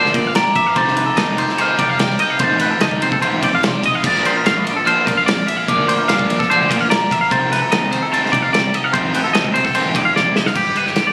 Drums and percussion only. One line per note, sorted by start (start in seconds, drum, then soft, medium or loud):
0.06 snare soft
0.14 kick medium
0.14 ride medium
0.35 snare loud
0.35 ride loud
0.56 kick medium
0.56 ride medium
0.76 kick loud
0.76 ride medium
0.88 snare soft
0.97 ride medium
1.17 snare loud
1.17 ride loud
1.38 ride medium
1.49 snare soft
1.58 ride loud
1.79 kick medium
1.79 ride medium
1.99 snare loud
1.99 ride loud
2.11 snare soft
2.19 ride medium
2.39 kick loud
2.39 ride loud
2.60 ride medium
2.80 snare loud
2.80 ride loud
2.91 kick medium
3.02 ride medium
3.12 kick medium
3.22 ride loud
3.43 kick medium
3.43 ride medium
3.63 snare loud
3.63 ride loud
3.83 kick medium
3.83 ride medium
4.04 kick loud
4.04 crash loud
4.15 snare soft
4.25 ride medium
4.46 snare loud
4.46 ride medium
4.67 ride medium
4.87 ride medium
5.07 kick medium
5.07 ride medium
5.28 snare loud
5.28 ride loud
5.39 snare soft
5.48 ride medium
5.68 kick loud
5.68 ride loud
5.89 ride medium
6.09 snare loud
6.09 ride loud
6.19 kick medium
6.30 ride medium
6.40 kick medium
6.40 snare soft
6.51 ride medium
6.71 kick medium
6.71 ride medium
6.91 snare loud
6.91 ride loud
7.11 kick medium
7.11 ride medium
7.31 kick loud
7.31 ride loud
7.53 snare soft
7.53 ride medium
7.72 snare loud
7.72 ride loud
7.93 ride medium
8.14 ride medium
8.26 snare soft
8.33 kick medium
8.33 ride medium
8.54 snare loud
8.54 ride loud
8.74 ride medium
8.94 kick loud
8.94 ride loud
9.14 ride medium
9.35 snare loud
9.35 ride loud
9.44 kick medium
9.55 ride medium
9.65 kick medium
9.65 snare soft
9.75 ride loud
9.95 kick medium
9.95 ride medium
10.16 snare medium
10.36 snare medium
10.46 snare medium
10.55 kick loud
10.55 crash medium
10.76 ride medium
10.86 snare soft
10.96 snare loud
10.96 ride medium